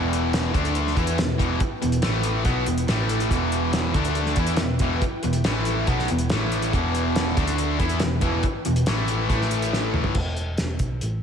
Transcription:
Already playing: picked electric bass E1, distorted electric guitar E2 B2 E3, string machine E4 B4 G5
0.13 closed hi-hat
0.33 snare, closed hi-hat
0.53 picked electric bass D2, distorted electric guitar D3 A3 D4, string machine D4 A4 A5, kick, closed hi-hat
0.65 closed hi-hat
0.75 closed hi-hat
0.87 snare
0.97 picked electric bass E2, distorted electric guitar E3 B3 E4, string machine E4 B4 G5, kick, closed hi-hat
1.07 closed hi-hat
1.18 picked electric bass E1, distorted electric guitar E2 B2, snare, closed hi-hat
1.38 picked electric bass E1, distorted electric guitar E2 B2 E3, kick, closed hi-hat
1.60 muted distorted electric guitar stroke, kick, closed hi-hat
1.82 picked electric bass E1, distorted electric guitar E2 B2, closed hi-hat
1.92 closed hi-hat
2.02 picked electric bass A1, distorted electric guitar A2 E3 A3, string machine E4 A4 A5, snare, closed hi-hat
2.23 closed hi-hat
2.45 picked electric bass B1, distorted electric guitar B2 F#3 B3, string machine E4 B4 G5, kick, closed hi-hat
2.66 picked electric bass E1, distorted electric guitar E2 B2, closed hi-hat
2.78 closed hi-hat
2.88 picked electric bass A1, distorted electric guitar A2 E3 A3, string machine E4 A4 A5, snare, closed hi-hat
3.09 closed hi-hat
3.20 closed hi-hat
3.31 picked electric bass E1, distorted electric guitar E2 B2 E3, string machine E4 B4 G5, kick, closed hi-hat
3.52 closed hi-hat
3.73 snare, closed hi-hat
3.94 picked electric bass D2, distorted electric guitar D3 A3 D4, string machine D4 A4 A5, kick, closed hi-hat
4.05 closed hi-hat
4.15 closed hi-hat
4.26 snare
4.36 picked electric bass E2, distorted electric guitar E3 B3, string machine E4 B4 G5, kick, closed hi-hat
4.40 distorted electric guitar E4
4.47 closed hi-hat
4.57 picked electric bass E1, distorted electric guitar E2, snare, closed hi-hat
4.61 distorted electric guitar B2
4.79 picked electric bass E1, distorted electric guitar E2 B2 E3, kick, closed hi-hat
5.02 muted distorted electric guitar stroke, kick, closed hi-hat
5.23 picked electric bass E1, distorted electric guitar E2 B2, closed hi-hat
5.33 closed hi-hat
5.44 picked electric bass A1, distorted electric guitar A2 E3 A3, string machine E4 A4 A5, snare, closed hi-hat
5.65 closed hi-hat
5.87 picked electric bass B1, distorted electric guitar B2 F#3 B3, string machine E4 B4 G5, kick, closed hi-hat
5.99 snare
6.08 picked electric bass E1, distorted electric guitar E2 B2, closed hi-hat
6.19 closed hi-hat
6.30 picked electric bass A1, distorted electric guitar A2 E3 A3, string machine E4, snare, closed hi-hat
6.34 string machine A4 A5
6.52 closed hi-hat
6.62 closed hi-hat
6.73 picked electric bass E1, distorted electric guitar E2 B2 E3, string machine E4 B4 G5, kick, closed hi-hat
6.95 closed hi-hat
7.16 snare, closed hi-hat
7.37 picked electric bass D2, distorted electric guitar D3 A3 D4, string machine D4 A4 A5, kick, closed hi-hat
7.47 closed hi-hat
7.58 closed hi-hat
7.79 picked electric bass E2, distorted electric guitar E3 B3 E4, string machine E4 B4 G5, kick, closed hi-hat
7.89 closed hi-hat
8.00 picked electric bass E1, distorted electric guitar E2 B2, snare, closed hi-hat
8.21 picked electric bass E1, distorted electric guitar E2 B2 E3, kick, closed hi-hat
8.43 muted distorted electric guitar stroke, kick, closed hi-hat
8.65 picked electric bass E1, distorted electric guitar E2 B2, closed hi-hat
8.76 closed hi-hat
8.85 distorted electric guitar A2 E3 A3, string machine E4 A4 A5, snare, closed hi-hat
8.89 picked electric bass A1
9.08 closed hi-hat
9.28 picked electric bass A1, distorted electric guitar A2 E3 A3, kick, closed hi-hat
9.42 snare
9.51 closed hi-hat
9.62 closed hi-hat
9.73 snare
9.94 mid tom
10.04 floor tom
10.15 picked electric bass E1, kick, crash
10.37 closed hi-hat
10.58 picked electric bass E1, snare, closed hi-hat
10.79 picked electric bass B1, kick, closed hi-hat
11.01 picked electric bass A1, closed hi-hat

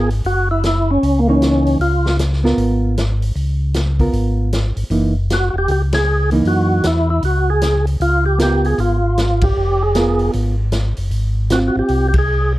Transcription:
Already playing: tonewheel organ G#1
0.10 open hi-hat
0.24 tonewheel organ F#1 F#4, open hi-hat
0.51 tonewheel organ E4
0.64 tonewheel organ E4, snare, closed hi-hat
0.91 tonewheel organ C#4
1.03 tonewheel organ C#2, open hi-hat
1.19 tonewheel organ A#3
1.27 hollow-body jazz guitar E3 A#3 D#4, tonewheel organ C#4
1.42 snare, closed hi-hat
1.66 open hi-hat
1.80 tonewheel organ C#2 F4, open hi-hat
2.06 snare
2.19 snare, closed hi-hat
2.33 snare
2.44 hollow-body jazz guitar B3 F4 A#4, snare
2.58 tonewheel organ G#1, open hi-hat
2.97 snare, closed hi-hat
3.22 open hi-hat
3.36 tonewheel organ C#2, open hi-hat
3.74 snare, closed hi-hat
3.99 hollow-body jazz guitar B3 F4 A#4, kick, open hi-hat
4.13 tonewheel organ G#1, open hi-hat
4.53 snare, closed hi-hat
4.77 tonewheel organ G#1, open hi-hat
4.90 tonewheel organ F#1, hollow-body jazz guitar E3 A#3 D#4, open hi-hat
5.30 tonewheel organ F#4, snare, closed hi-hat
5.50 tonewheel organ E1 F#4
5.58 tonewheel organ G4
5.68 tonewheel organ C#2 G4, open hi-hat
5.93 tonewheel organ G#4, snare, ride
6.31 hollow-body jazz guitar E3 A#3 D#4, open hi-hat
6.45 tonewheel organ F#2 F#4, open hi-hat
6.83 tonewheel organ E2 E4, snare, closed hi-hat
7.10 tonewheel organ E4
7.23 tonewheel organ C#2 F#4, open hi-hat
7.50 tonewheel organ G#4
7.61 snare, closed hi-hat
7.87 open hi-hat
8.00 tonewheel organ C#2 F4, open hi-hat
8.26 tonewheel organ G4
8.39 hollow-body jazz guitar B3 F4 A#4, tonewheel organ G4, snare, closed hi-hat
8.65 tonewheel organ G#4, open hi-hat
8.78 tonewheel organ G#1 F4, open hi-hat
9.18 snare, closed hi-hat
9.41 tonewheel organ G4, kick, ride
9.57 tonewheel organ F1
9.83 tonewheel organ G#4
9.95 hollow-body jazz guitar B3 F4 A#4, snare, closed hi-hat
10.19 open hi-hat
10.33 tonewheel organ G#1, open hi-hat
10.72 snare, closed hi-hat
10.97 tonewheel organ F#1, open hi-hat
11.11 tonewheel organ G#1, open hi-hat
11.50 hollow-body jazz guitar C4 F4, tonewheel organ F#4, snare, closed hi-hat
11.68 tonewheel organ F#4
11.76 tonewheel organ G#1 G4
11.88 tonewheel organ C2, open hi-hat
12.09 tonewheel organ G4
12.14 kick, ride
12.18 tonewheel organ G#4

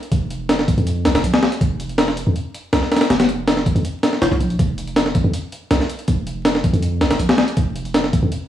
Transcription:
0.03 closed hi-hat
0.12 808-style bass F1, kick, closed hi-hat
0.30 closed hi-hat
0.49 snare, closed hi-hat
0.59 snare
0.68 kick, closed hi-hat
0.78 808-style bass F2, closed hi-hat
0.87 closed hi-hat
1.05 808-style bass C2, snare, closed hi-hat
1.15 808-style bass F1, snare, closed hi-hat
1.24 808-style bass A#1, closed hi-hat
1.34 snare
1.43 snare
1.52 closed hi-hat
1.61 808-style bass F1, kick, closed hi-hat
1.80 closed hi-hat
1.89 closed hi-hat
1.98 snare, closed hi-hat
2.08 snare
2.17 closed hi-hat
2.27 808-style bass F2
2.36 closed hi-hat
2.54 closed hi-hat
2.73 808-style bass C2, snare, closed hi-hat
2.83 snare
2.92 snare, closed hi-hat
2.96 snare, closed hi-hat
3.01 snare, closed hi-hat
3.10 808-style bass F1, snare, closed hi-hat
3.20 snare, closed hi-hat
3.29 closed hi-hat
3.48 snare, closed hi-hat
3.57 snare
3.66 kick, closed hi-hat
3.75 808-style bass F2, closed hi-hat
3.85 closed hi-hat
4.03 snare, closed hi-hat
4.13 snare
4.22 808-style bass F1, snare, closed hi-hat
4.31 808-style bass C2, snare
4.40 808-style bass A#1, closed hi-hat
4.50 closed hi-hat
4.59 808-style bass F1, kick, closed hi-hat
4.78 closed hi-hat
4.87 closed hi-hat
4.96 snare, closed hi-hat
5.06 snare
5.15 kick, closed hi-hat
5.24 808-style bass F2
5.34 closed hi-hat
5.52 closed hi-hat
5.71 808-style bass C2, snare, closed hi-hat
5.80 snare
5.89 closed hi-hat
5.99 closed hi-hat
6.08 808-style bass F1, kick, closed hi-hat
6.27 closed hi-hat
6.45 snare, closed hi-hat
6.55 snare
6.64 kick, closed hi-hat
6.73 808-style bass F2, closed hi-hat
6.83 closed hi-hat
7.01 808-style bass C2, snare, closed hi-hat
7.10 808-style bass F1, snare, closed hi-hat
7.19 808-style bass A#1, closed hi-hat
7.29 snare
7.38 snare
7.48 closed hi-hat
7.57 808-style bass F1, kick, closed hi-hat
7.76 closed hi-hat
7.85 closed hi-hat
7.94 snare, closed hi-hat
8.04 snare
8.13 kick, closed hi-hat
8.23 808-style bass F2
8.32 closed hi-hat

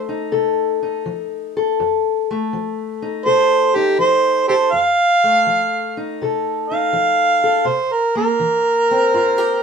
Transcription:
Already playing: steel-string acoustic guitar F3 A3 A4, harmonica C5
0.09 steel-string acoustic guitar D#4
0.32 steel-string acoustic guitar C3 A4
0.83 steel-string acoustic guitar D#4
1.06 steel-string acoustic guitar F3
1.57 steel-string acoustic guitar A4
1.80 steel-string acoustic guitar F2
2.31 steel-string acoustic guitar A3
2.53 steel-string acoustic guitar F3
3.02 steel-string acoustic guitar D#4
3.25 steel-string acoustic guitar C3 A4, harmonica C5
3.76 steel-string acoustic guitar D#4, harmonica G4
3.99 steel-string acoustic guitar F3, harmonica C5
4.48 harmonica G4 A4 C5, steel-string acoustic guitar A4
4.72 steel-string acoustic guitar F2, harmonica F5
5.24 steel-string acoustic guitar A3
5.47 steel-string acoustic guitar F3
5.97 steel-string acoustic guitar D#4
6.22 steel-string acoustic guitar C3 A4
6.68 steel-string acoustic guitar D#4, harmonica F5
6.93 steel-string acoustic guitar F3
7.44 steel-string acoustic guitar A4
7.65 steel-string acoustic guitar C3, harmonica C5
7.92 harmonica A#4
8.15 steel-string acoustic guitar A#3, harmonica A#4
8.40 steel-string acoustic guitar E3
8.91 steel-string acoustic guitar C4
9.14 steel-string acoustic guitar G2 F4
9.38 steel-string acoustic guitar G4

